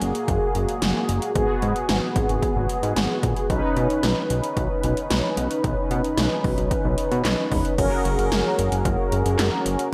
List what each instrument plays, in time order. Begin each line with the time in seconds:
Already playing: analog polysynth A#3 F#4 G#4
0.02 analog synth bass F#1, closed hi-hat
0.15 closed hi-hat
0.28 analog synth bass F#1, kick, closed hi-hat
0.55 analog synth bass F#1, closed hi-hat
0.69 closed hi-hat
0.82 analog synth bass F#1, snare, closed hi-hat
1.09 analog synth bass F#1, closed hi-hat
1.22 closed hi-hat
1.35 analog synth bass G#1, analog polysynth B3 F#4 G#4, kick, closed hi-hat
1.62 analog synth bass G#2, closed hi-hat
1.76 closed hi-hat
1.89 analog synth bass G#1, snare, closed hi-hat
2.16 analog synth bass G#1, kick, closed hi-hat
2.29 analog synth bass G#1, closed hi-hat
2.42 kick, closed hi-hat
2.56 analog synth bass G#1
2.69 closed hi-hat
2.83 analog synth bass G#2, closed hi-hat
2.96 analog synth bass G#1, snare, closed hi-hat
3.23 analog synth bass A#1, kick, closed hi-hat
3.36 closed hi-hat
3.50 analog synth bass B1, analog polysynth C#4 D#4 B4, kick, closed hi-hat
3.77 analog synth bass B2, closed hi-hat
3.90 closed hi-hat
4.03 analog synth bass B1, snare, closed hi-hat
4.30 analog synth bass B1, closed hi-hat
4.44 closed hi-hat
4.57 analog synth bass B1, kick, closed hi-hat
4.83 analog synth bass B1, closed hi-hat
4.97 closed hi-hat
5.10 analog synth bass B1, snare, closed hi-hat
5.37 analog synth bass B1, closed hi-hat
5.51 closed hi-hat
5.64 analog synth bass B1, kick, closed hi-hat
5.91 analog synth bass B2, closed hi-hat
6.04 closed hi-hat
6.17 analog synth bass B1, snare, closed hi-hat
6.44 analog synth bass B1, kick, open hi-hat
6.58 analog synth bass B1, closed hi-hat
6.71 kick, closed hi-hat
6.85 analog synth bass B1
6.98 closed hi-hat
7.11 analog synth bass B2, closed hi-hat
7.25 analog synth bass B1, snare, clap, closed hi-hat
7.52 analog synth bass E1, kick, open hi-hat
7.65 closed hi-hat
7.78 analog synth bass F#1, analog polysynth C#4 F#4 G#4 A#4, kick, closed hi-hat, crash
8.05 analog synth bass F#1, closed hi-hat
8.19 analog synth bass F#1, closed hi-hat
8.32 analog synth bass F#1, snare, closed hi-hat
8.59 analog synth bass F#1, closed hi-hat
8.72 analog synth bass F#1, closed hi-hat
8.85 analog synth bass F#1, kick, closed hi-hat
9.12 analog synth bass F#1, closed hi-hat
9.26 analog synth bass F#1, closed hi-hat
9.39 analog synth bass F#1, snare, clap, closed hi-hat
9.66 analog synth bass F#1, closed hi-hat
9.79 closed hi-hat